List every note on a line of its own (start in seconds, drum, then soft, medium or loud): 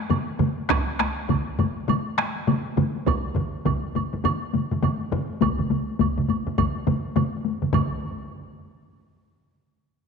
0.10 taiko low-mid medium
0.10 taiko mid medium
0.10 taiko high medium
0.10 high woodblock soft
0.39 taiko low-mid loud
0.39 taiko mid medium
0.39 taiko high medium
0.58 taiko high soft
0.69 taiko rim medium
0.69 taiko loud
0.69 taiko high medium
0.69 high woodblock medium
0.87 taiko high soft
1.00 taiko rim medium
1.00 taiko high medium
1.29 taiko medium
1.29 taiko low-mid medium
1.29 taiko mid medium
1.29 taiko high medium
1.29 high woodblock soft
1.47 taiko high soft
1.59 taiko low-mid loud
1.59 taiko mid medium
1.59 taiko high medium
1.59 high woodblock soft
1.77 taiko high soft
1.88 taiko low-mid medium
1.88 taiko mid medium
1.88 taiko high medium
1.88 high woodblock medium
2.07 taiko high soft
2.18 taiko rim medium
2.18 taiko high soft
2.36 taiko high soft
2.47 taiko low-mid medium
2.47 taiko mid medium
2.47 taiko high medium
2.47 high woodblock soft
2.66 taiko high soft
2.77 taiko low-mid medium
2.77 taiko mid medium
2.77 taiko high soft
2.95 taiko high soft
3.06 taiko loud
3.06 taiko high medium
3.06 high woodblock medium
3.25 taiko high soft
3.36 taiko low-mid medium
3.36 taiko mid medium
3.65 taiko medium
3.65 taiko low-mid medium
3.65 taiko mid medium
3.65 taiko high medium
3.65 high woodblock soft
3.84 taiko high soft
3.95 taiko low-mid medium
3.95 taiko mid medium
3.95 taiko high medium
3.95 high woodblock soft
4.13 taiko low-mid medium
4.13 taiko mid medium
4.13 taiko high soft
4.24 taiko low-mid medium
4.24 taiko mid loud
4.24 taiko high medium
4.24 high woodblock medium
4.42 taiko high soft
4.54 taiko low-mid medium
4.54 taiko mid medium
4.54 taiko high medium
4.71 taiko low-mid medium
4.71 taiko mid medium
4.71 taiko high soft
4.83 taiko low-mid medium
4.83 taiko mid medium
4.83 taiko high medium
4.83 high woodblock soft
5.00 taiko high soft
5.12 taiko low-mid loud
5.12 taiko mid medium
5.12 taiko high medium
5.29 taiko high soft
5.41 taiko medium
5.41 taiko low-mid medium
5.41 taiko mid medium
5.41 taiko high medium
5.41 high woodblock medium
5.58 taiko low-mid medium
5.58 taiko mid medium
5.58 taiko high soft
5.70 taiko low-mid medium
5.70 taiko mid medium
5.70 taiko high medium
5.99 taiko medium
5.99 taiko low-mid medium
5.99 taiko mid medium
5.99 taiko high medium
5.99 high woodblock soft
6.17 taiko low-mid medium
6.17 taiko mid medium
6.17 taiko high soft
6.29 taiko low-mid medium
6.29 taiko mid medium
6.29 taiko high medium
6.29 high woodblock soft
6.47 taiko low-mid medium
6.47 taiko mid medium
6.47 taiko high soft
6.58 taiko medium
6.58 taiko low-mid loud
6.58 taiko mid medium
6.58 taiko high medium
6.58 high woodblock medium
6.75 taiko high soft
6.87 taiko low-mid medium
6.87 taiko mid medium
6.87 taiko high medium
7.05 taiko high soft
7.16 taiko low-mid loud
7.16 taiko mid medium
7.16 taiko high medium
7.16 high woodblock soft
7.45 taiko high medium
7.62 taiko low-mid medium
7.62 taiko mid medium
7.62 taiko high soft
7.73 taiko medium
7.73 taiko low-mid loud
7.73 taiko mid loud
7.73 taiko high medium
7.73 high woodblock medium